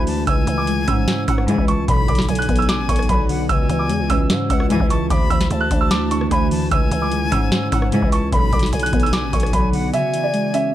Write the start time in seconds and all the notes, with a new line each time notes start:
Already playing: D2 D3 E3 A3 D4 E4 B5
0.07 E3 A5, open hi-hat
0.27 C#2 C#3 G#3 G#5 E6, kick, closed hi-hat
0.47 C#2 E3, closed hi-hat
0.58 D6
0.67 G#3, closed hi-hat
0.87 C#2 G#2 E3 C#4 E6, kick, closed hi-hat
1.08 snare, closed hi-hat
1.28 G#2 C#4 F#5 E6, kick, closed hi-hat
1.38 cross-stick
1.48 C#2 G#2 E3 G#3 G#5, closed hi-hat
1.58 C#2, kick
1.68 E3 A5 C#6, closed hi-hat
1.88 B1 B2 B3 F#4 D5 B5, kick, closed hi-hat
2.08 B1 D3 D6, kick, closed hi-hat
2.15 snare, closed hi-hat
2.22 closed hi-hat
2.28 B1 F#3 G#5, closed hi-hat
2.35 F#6, closed hi-hat
2.42 closed hi-hat
2.49 B1 B3, kick, closed hi-hat
2.56 E6, closed hi-hat
2.62 closed hi-hat
2.69 D6, snare, closed hi-hat
2.79 A1
2.89 B1 B3 C#6, kick, closed hi-hat
2.96 cross-stick, closed hi-hat
3.02 closed hi-hat
3.08 B1 F#3 B5, kick, closed hi-hat
3.29 D3 F#5, open hi-hat
3.49 C#2 C#3 G#3 E4 G#5 E6, kick, closed hi-hat
3.69 C#2 E3, closed hi-hat
3.79 D6
3.89 E2 G#3, closed hi-hat
4.00 C#2
4.10 C#2 G#2 E3 C#4 E6, kick, closed hi-hat
4.30 G#2, snare, closed hi-hat
4.49 C#2 C#4 F#5 E6, kick, closed hi-hat
4.60 cross-stick
4.70 C#2 G#2 E3 G#3 G#5, closed hi-hat
4.80 C#2, kick
4.90 E3 A5 C#6, closed hi-hat
5.10 D2 D3 A3 E4 B5 D6, kick, closed hi-hat
5.30 D2 E3 E6, kick, closed hi-hat
5.41 snare, closed hi-hat
5.50 D2 A3 A5, closed hi-hat
5.61 F#6
5.71 D2 D4, kick, closed hi-hat
5.81 E6
5.91 D6, snare, closed hi-hat
6.11 D4 C#6, closed hi-hat
6.21 cross-stick
6.31 D2 A3 G#5 B5, kick, closed hi-hat
6.51 E3 A5, open hi-hat
6.71 C#2 C#3 G#3 G#5 E6, kick, closed hi-hat
6.91 C#2 E3, closed hi-hat
7.02 D6
7.12 G#3, closed hi-hat
7.32 C#2 G#2 E3 C#4 E6, kick, closed hi-hat
7.52 snare, closed hi-hat
7.72 G#2 C#4 F#5 E6, kick, closed hi-hat
7.82 cross-stick
7.92 C#2 G#2 E3 G#3 G#5, closed hi-hat
8.02 C#2, kick
8.12 E3 A5 C#6, closed hi-hat
8.32 B1 B2 B3 F#4 D5 B5, kick, closed hi-hat
8.52 B1 D3 D6, kick, closed hi-hat
8.59 snare, closed hi-hat
8.66 closed hi-hat
8.73 B1 F#3 G#5, closed hi-hat
8.79 F#6, closed hi-hat
8.86 closed hi-hat
8.93 B1 B3, kick, closed hi-hat
9.00 E6, closed hi-hat
9.06 closed hi-hat
9.13 D6, snare, closed hi-hat
9.23 A1
9.33 B1 B3 C#6, kick, closed hi-hat
9.40 cross-stick, closed hi-hat
9.46 closed hi-hat
9.53 B1 F#3 B5, kick, closed hi-hat
9.73 D3 F#5, open hi-hat
9.93 C#3 G#3 E4 E5 G#5, closed hi-hat
10.14 E3, closed hi-hat
10.23 D5
10.34 G#3, closed hi-hat
10.54 C#4 E5, closed hi-hat